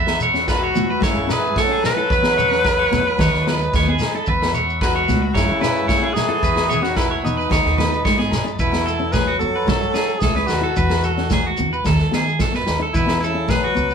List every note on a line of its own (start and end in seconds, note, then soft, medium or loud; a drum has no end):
0.00 0.71 E2 medium
0.00 0.21 E5 medium
0.00 3.16 E5 medium
0.00 3.15 F#5 medium
0.00 1.01 B5 medium
0.07 0.24 B3 medium
0.07 snare medium
0.07 low agogo medium
0.20 0.48 C#5 medium
0.20 muted conga soft
0.20 shekere medium
0.34 0.51 C#4 medium
0.34 snare soft
0.34 shekere soft
0.48 1.00 B2 medium
0.48 1.00 F#4 medium
0.48 0.62 B4 medium
0.48 kick medium
0.48 snare medium
0.48 low agogo medium
0.48 shekere medium
0.64 0.89 C#5 medium
0.75 1.00 E2 medium
0.75 0.92 B3 medium
0.75 high conga medium
0.75 shekere medium
0.90 1.03 B4 medium
1.00 1.15 F#2 loud
1.00 1.18 A3 medium
1.00 1.33 E4 medium
1.00 1.29 C#5 medium
1.00 2.09 A5 medium
1.00 kick medium
1.00 snare medium
1.00 low agogo medium
1.00 shekere medium
1.07 1.36 C#3 medium
1.17 1.53 F#2 medium
1.27 1.45 C#4 medium
1.27 snare medium
1.27 low agogo medium
1.27 shekere medium
1.31 1.64 E3 medium
1.31 1.61 G#4 medium
1.31 1.56 B4 medium
1.45 shekere soft
1.56 1.81 F#2 medium
1.56 1.85 A4 loud
1.56 1.70 C#5 medium
1.56 kick medium
1.56 snare medium
1.56 high conga medium
1.56 shekere medium
1.62 1.86 F#3 medium
1.68 1.85 C#4 medium
1.68 1.97 G#4 medium
1.83 3.97 B4 loud
1.83 snare medium
1.83 muted conga soft
1.83 high conga medium
1.83 low agogo medium
1.83 shekere medium
1.87 3.97 F#3 medium
1.96 2.05 E4 medium
1.96 2.10 A4 medium
2.10 2.87 E2 loud
2.10 2.37 B4 medium
2.10 3.17 B5 medium
2.10 kick medium
2.10 snare soft
2.10 muted conga soft
2.10 shekere medium
2.22 2.40 B3 medium
2.22 snare medium
2.22 low agogo medium
2.38 2.63 C#5 medium
2.38 muted conga soft
2.38 low conga medium
2.38 shekere medium
2.51 2.68 C#4 medium
2.51 snare soft
2.51 shekere soft
2.64 2.78 B4 medium
2.64 kick medium
2.64 snare medium
2.64 low agogo medium
2.64 shekere medium
2.79 3.04 C#5 medium
2.91 3.16 E2 medium
2.91 3.08 B3 medium
2.91 snare soft
2.91 high conga medium
2.91 shekere medium
3.08 3.19 B4 medium
3.18 3.31 D#2 loud
3.18 3.35 A3 medium
3.18 3.45 C#5 medium
3.18 4.26 D#5 medium
3.18 4.25 A5 medium
3.18 5.32 B5 medium
3.18 kick medium
3.18 snare medium
3.18 muted conga soft
3.18 low agogo medium
3.18 shekere medium
3.34 3.70 D#2 loud
3.34 snare soft
3.47 3.63 B3 medium
3.47 3.73 B4 medium
3.47 snare medium
3.47 high conga medium
3.47 low agogo medium
3.61 shekere soft
3.73 3.97 D#2 medium
3.73 3.87 C#5 medium
3.73 kick medium
3.73 snare medium
3.73 high conga medium
3.73 shekere medium
3.88 4.04 B3 medium
3.88 4.13 G#4 medium
3.99 snare medium
3.99 muted conga soft
3.99 low agogo medium
3.99 shekere medium
4.14 4.22 D#4 medium
4.14 4.27 A4 medium
4.26 5.04 E2 loud
4.26 4.53 B4 loud
4.26 7.48 E5 medium
4.26 7.48 F#5 medium
4.26 kick medium
4.26 muted conga soft
4.26 shekere medium
4.42 4.59 B3 medium
4.42 snare medium
4.42 low agogo medium
4.54 4.80 C#5 medium
4.54 muted conga soft
4.54 shekere medium
4.69 shekere soft
4.81 5.33 B2 medium
4.81 5.32 F#4 medium
4.81 4.94 B4 medium
4.81 kick medium
4.81 snare medium
4.81 low agogo medium
4.81 shekere medium
4.96 5.21 C#5 medium
5.08 5.32 C#2 medium
5.08 5.25 B3 medium
5.08 snare soft
5.08 high conga medium
5.08 shekere medium
5.22 muted clean electric guitar stroke medium
5.34 5.48 F#2 loud
5.34 6.16 C#3 medium
5.34 5.52 A3 medium
5.34 6.15 E4 loud
5.34 5.60 C#5 medium
5.34 6.42 A5 medium
5.34 kick medium
5.34 snare medium
5.34 low agogo medium
5.34 shekere medium
5.49 5.85 F#2 loud
5.61 5.78 C#4 medium
5.61 5.87 B4 medium
5.61 snare medium
5.61 low agogo medium
5.61 shekere medium
5.77 shekere soft
5.88 6.13 F#2 medium
5.88 6.01 C#5 medium
5.88 kick medium
5.88 snare medium
5.88 high conga medium
5.88 shekere medium
6.02 6.19 C#4 medium
6.02 6.28 G#4 medium
6.14 6.83 E3 loud
6.14 6.84 G#4 loud
6.14 snare medium
6.14 muted conga soft
6.14 high conga medium
6.14 low agogo medium
6.14 shekere medium
6.28 6.37 E4 medium
6.28 6.42 A4 medium
6.42 7.20 E2 loud
6.42 6.69 B4 medium
6.42 8.57 B5 medium
6.42 kick medium
6.42 snare soft
6.42 muted conga soft
6.42 shekere medium
6.56 6.73 B3 medium
6.56 snare medium
6.56 low agogo medium
6.69 6.95 C#5 medium
6.69 muted conga soft
6.69 low conga medium
6.69 shekere medium
6.81 6.99 D#3 medium
6.81 6.99 C#4 medium
6.81 6.99 F#4 medium
6.81 snare soft
6.81 shekere soft
6.96 7.22 B2 medium
6.96 7.24 E4 medium
6.96 7.10 B4 medium
6.96 kick medium
6.96 snare medium
6.96 low agogo medium
6.96 shekere medium
7.11 7.36 C#5 medium
7.23 7.49 E2 medium
7.23 8.28 B2 medium
7.23 7.41 B3 medium
7.23 8.28 D#4 medium
7.23 shekere medium
7.37 7.50 B4 medium
7.37 shekere soft
7.50 7.63 D#2 loud
7.50 7.67 A3 medium
7.50 7.77 C#5 medium
7.50 8.59 D#5 medium
7.50 8.59 A5 medium
7.50 kick medium
7.50 snare medium
7.50 low agogo medium
7.50 shekere medium
7.65 8.01 D#2 medium
7.65 snare soft
7.78 7.95 B3 medium
7.78 8.04 B4 medium
7.78 snare medium
7.78 high conga medium
7.78 low conga medium
7.78 low agogo medium
7.94 shekere soft
8.05 8.29 G#2 medium
8.05 8.18 C#5 medium
8.05 kick medium
8.05 snare medium
8.05 high conga medium
8.05 shekere medium
8.18 8.35 B3 medium
8.18 8.44 G#4 medium
8.18 snare soft
8.31 8.56 F#2 medium
8.31 snare medium
8.31 muted conga soft
8.31 low agogo medium
8.31 shekere medium
8.45 8.53 D#4 medium
8.45 shekere soft
8.59 9.37 E2 medium
8.59 9.15 B2 medium
8.59 9.14 E4 medium
8.59 8.85 B4 medium
8.59 kick medium
8.59 muted conga soft
8.59 shekere medium
8.72 8.89 B3 medium
8.72 snare medium
8.72 low agogo medium
8.72 shekere soft
8.86 9.12 A4 medium
8.86 muted conga soft
8.86 shekere medium
8.99 9.16 C#4 medium
9.13 9.41 F#3 medium
9.13 9.26 G#4 medium
9.13 9.39 B4 loud
9.13 kick medium
9.13 snare medium
9.13 high conga medium
9.13 low agogo medium
9.13 shekere medium
9.27 9.53 F#4 medium
9.39 9.66 F2 medium
9.39 10.22 F#3 medium
9.39 9.57 B3 medium
9.39 10.20 A4 loud
9.39 muted conga soft
9.39 shekere medium
9.55 9.68 B4 medium
9.66 9.80 F#2 loud
9.66 9.84 A3 medium
9.66 9.94 A4 medium
9.66 kick medium
9.66 snare medium
9.66 muted conga soft
9.66 high conga medium
9.66 low agogo medium
9.66 shekere medium
9.81 10.18 F#3 medium
9.81 shekere soft
9.94 10.11 C#4 medium
9.94 10.20 G#4 medium
9.94 snare medium
9.94 low agogo medium
9.94 shekere medium
10.09 shekere soft
10.19 10.46 C#2 medium
10.19 10.52 E3 medium
10.19 10.48 G#4 medium
10.19 kick medium
10.19 snare medium
10.19 shekere medium
10.23 10.36 A4 medium
10.23 high conga medium
10.35 10.52 C#4 medium
10.35 10.62 B4 medium
10.35 snare soft
10.35 shekere soft
10.47 10.74 D#2 medium
10.47 11.58 B2 medium
10.47 11.57 F#4 medium
10.47 snare medium
10.47 low agogo medium
10.47 shekere medium
10.61 10.70 E4 medium
10.61 10.76 A4 medium
10.76 11.54 E2 loud
10.76 11.03 B4 medium
10.76 kick medium
10.76 shekere medium
10.89 11.06 B3 medium
10.89 snare medium
10.89 low agogo medium
10.89 shekere soft
11.03 11.30 A4 medium
11.03 muted conga soft
11.03 shekere medium
11.17 11.34 C#4 medium
11.17 snare soft
11.30 11.45 G#4 medium
11.30 kick medium
11.30 snare medium
11.30 high conga medium
11.30 low agogo medium
11.30 shekere medium
11.47 11.71 F#4 medium
11.57 11.83 E2 medium
11.57 11.75 B3 medium
11.57 muted conga soft
11.57 low conga medium
11.57 shekere medium
11.73 11.85 B4 medium
11.73 shekere soft
11.84 11.98 D#2 loud
11.84 12.01 A3 medium
11.84 12.12 A4 medium
11.84 kick medium
11.84 snare medium
11.84 low agogo medium
11.84 shekere medium
11.99 12.36 D#3 medium
11.99 snare soft
11.99 shekere soft
12.11 12.29 B3 medium
12.11 12.39 G#4 medium
12.11 snare medium
12.11 high conga medium
12.11 low agogo medium
12.11 shekere medium
12.28 shekere soft
12.39 12.64 F#2 medium
12.39 12.53 A4 medium
12.39 kick medium
12.39 snare medium
12.39 high conga medium
12.39 shekere medium
12.52 12.69 B3 medium
12.52 12.80 B4 medium
12.52 snare soft
12.52 shekere soft
12.66 12.92 D#2 medium
12.66 snare medium
12.66 low agogo medium
12.66 shekere medium
12.79 12.88 D#4 medium
12.79 12.94 A4 medium
12.93 13.72 E2 loud
12.93 13.20 B2 medium
12.93 13.19 E4 loud
12.93 13.21 B4 medium
12.93 kick medium
12.93 muted conga soft
12.93 shekere medium
13.06 13.23 B3 medium
13.06 snare medium
13.06 low agogo medium
13.06 shekere soft
13.20 13.50 C#3 medium
13.20 13.52 E4 medium
13.20 13.48 A4 medium
13.20 shekere medium
13.34 13.51 C#4 medium
13.48 13.94 F#3 medium
13.48 13.62 G#4 medium
13.48 13.94 B4 loud
13.48 kick medium
13.48 snare medium
13.48 high conga medium
13.48 low agogo medium
13.48 shekere medium
13.64 13.89 F#4 medium
13.75 13.94 C#2 medium
13.75 13.92 B3 medium
13.75 muted conga soft
13.75 shekere medium
13.90 shekere soft